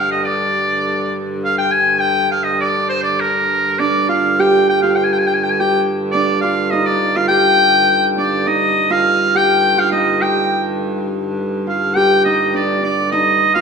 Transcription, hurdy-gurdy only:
Already playing: G2 D3
3.79 G2 D3
8.45 G2 D3
13.13 G2 D3

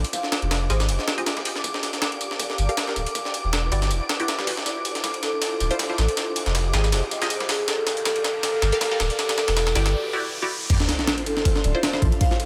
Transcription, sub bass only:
0.42 F1
0.70 G#1
0.88 F1
2.58 G1
2.96 D1
3.44 E1
3.72 G1
3.91 E1
5.61 D1
5.98 A1
6.46 F1
6.74 G#1
6.92 F1
8.62 G1
9.00 D1
9.48 E1
9.76 G1
11.64 D1
12.02 A1

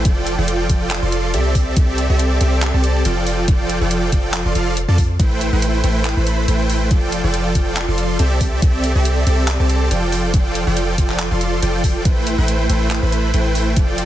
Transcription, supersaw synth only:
0.05 F3
0.38 F3 F4 A4 D5 G5
0.69 F3 F4 D5 G5
1.02 F3 F4 A4 D5 C6
1.34 C4 G4 A4 D5 E5
1.77 C4 G4 A4 D5 E5
2.10 C4 G4 A4 D5 E5
2.41 C4 G4 A4 D5 E5
2.74 C4 G4 A4 D5 A5
3.05 F3 F4 A4 D5 G5
3.48 F3 F4 A4 D5
3.81 F3 F4 A4 D5 G5
4.12 A4 D5 G5
4.46 F3 F4 A4 D5 C6
4.55 F3 F4 A4 D5 F5
4.88 F3 F4 A4 D5 A5
5.20 A3 E4 B4 C5 G5
5.53 A3 E4 B4 C5 G5
5.84 A3 E4 B4 C5 G5
6.17 A3 E4 B4 C5 B5
6.48 A3 E4 B4 C5 G5
6.91 F3 F4 A4 D5
7.24 F3 F4 A4 D5 G5
7.55 F3 F4 A4 D5 G5
7.88 F3 F4 A4 D5 C6
8.19 C4 G4 A4 D5 E5
8.62 C4 E5
8.95 C4 G4 A4 D5 E5
9.27 C4 G4 A4 D5 E5
9.60 C4 G4 A4 D5 A5
9.91 F3 F4 A4 D5 G5
10.67 F3 F4 A4 D5 G5
10.98 F3 F4 A4 D5 G5
11.31 F3 F4 A4 D5 C6
11.62 F3 F4 A4 D5 G5
12.05 A3 E4 B4 C5 G5
12.38 A3 E4 B4 C5 G5
12.69 A3 E4 B4 C5 G5
13.03 A3 E4 B4 C5 B5
13.34 A3 E4 B4 C5 G5
13.77 F3 F4 A4 G5

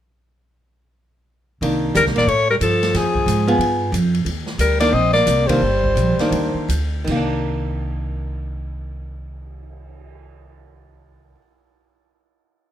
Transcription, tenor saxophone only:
1.94 G3
2.15 A#3
2.28 A3
2.50 G3
2.62 F3
2.97 F3
4.59 G3
4.81 A#3
4.92 C4
5.13 A#3
5.47 G3

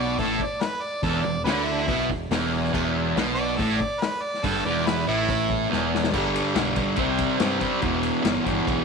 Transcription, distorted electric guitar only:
Already playing: B2
0.19 A2
1.03 E2
1.25 E2
1.45 D3
1.88 B2
2.09 E2
2.31 E2
2.73 E2
3.17 B2
3.59 A2
4.44 G2
4.65 E2
5.06 A2
5.70 E2
6.11 G2 D3 G3
6.54 G2 D3 G3
6.76 D3 G3
6.96 C3 G3 C4
7.38 C3 G3 C4
7.59 G3 C4
7.82 E2 B2 E3
8.22 E2 B2 E3
8.45 B2 E3

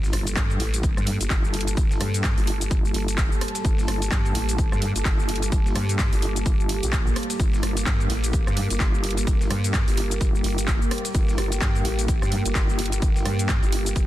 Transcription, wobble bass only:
Already playing: G1
0.13 G1
0.36 G2
0.60 A1
0.97 G2
1.21 G1
1.30 G1
1.77 G1
2.01 G2
2.38 G1
2.71 G1
2.94 G1
3.65 G1
3.88 G1
4.12 G2
4.35 A1
4.72 G2
4.95 G1
5.05 G1
5.52 G1
5.76 G2
6.13 G1
6.46 G1
6.83 A#1
7.40 G1
7.63 G1
7.86 G2
8.10 A1
8.47 G2
8.71 G1
8.80 G1
9.27 G1
9.51 G2
9.88 G1
10.21 G1
10.44 G1
11.15 G1
11.38 G1
11.61 G2
11.85 A1
12.22 G2
12.46 G1
12.55 G1
13.02 G1
13.25 G2
13.63 G1
13.96 F1

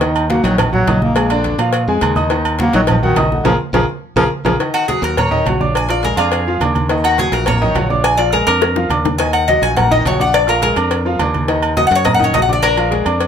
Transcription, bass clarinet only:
0.29 A#3
0.43 F#3
0.58 F3
0.73 F#3
1.02 A#3
2.60 A#3
2.75 F#3
2.90 F3
3.04 D#3
3.32 D3
3.46 F3
3.74 F3
4.17 F3
4.46 F3

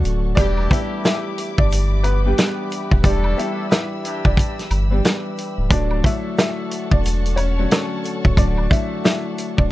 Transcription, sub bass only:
0.04 D1
0.37 E1
1.58 G1
2.92 D#1
3.04 E1
4.25 E1
4.71 G1
5.58 C#1
5.71 D1
6.92 E1
8.25 C#1
8.37 D1
9.58 D1

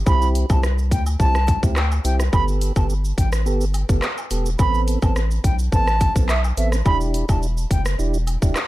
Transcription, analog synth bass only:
0.07 C2
0.50 C2
0.91 D2
1.20 C2
1.63 D2
2.05 C2
2.33 G1
2.76 G1
3.18 A1
3.46 G1
3.89 G1
4.31 E1
4.59 A1
5.02 A1
5.44 B1
5.72 A1
6.16 B1
6.57 A1
6.86 E1
7.29 E1
7.71 F#1
7.99 E1
8.42 E1

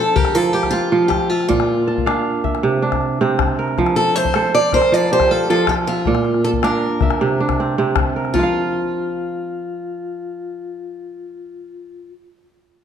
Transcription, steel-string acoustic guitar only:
Already playing: A4
0.16 G4
0.35 A4
0.53 G4
0.71 F4
1.08 G4
1.30 F4
1.48 F4
3.96 A4
4.16 C5
4.55 D5
4.74 C5
4.94 D5
5.13 C5
5.31 A4
5.50 A4
5.69 G4
5.87 F4
6.44 A4
6.64 A#4
8.34 F4

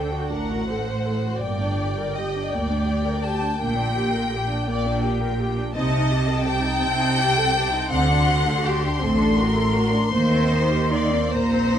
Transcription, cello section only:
Already playing: D3
0.31 A2
1.42 G2
2.52 D2
3.61 A#2
4.69 A#2
5.77 C3
6.84 C3
7.92 D3
9.02 A2
10.14 D#3
11.34 A#2

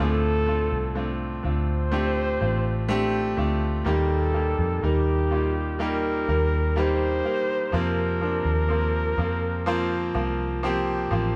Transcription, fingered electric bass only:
0.00 D2
0.72 C2
1.45 D2
2.41 A1
3.38 D2
3.86 D#2
4.59 F2
4.83 D#2
6.29 D#2
7.73 F2
8.45 D#2
9.18 F2
10.15 C2
11.11 A1

